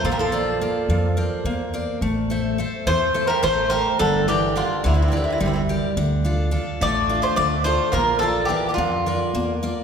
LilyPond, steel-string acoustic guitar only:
\new Staff \with { instrumentName = "Steel-string acoustic guitar" } { \time 7/8 \key a \phrygian \tempo 4 = 107 bes8 <bes c'' d''>8 <bes c'' d''>8 f8 <bes' c'' d''>8 bes8 <bes' c'' d''>8 | a8 <a' c'' e''>8 <a' c'' e''>8 e8 <a' c'' e''>8 a8 <a' c'' e''>8 | g8 <g' bes' d''>8 <g' bes' d''>8 d8 <g' bes' d''>8 g8 <g' bes' d''>8 | d8 <d' f' a'>8 <d' f' a'>8 a8 <d' f' a'>8 d8 <d' f' a'>8 |
bes8 <f' bes' d''>8 <f' bes' d''>8 f8 <f' bes' d''>8 bes8 <f' bes' d''>8 | }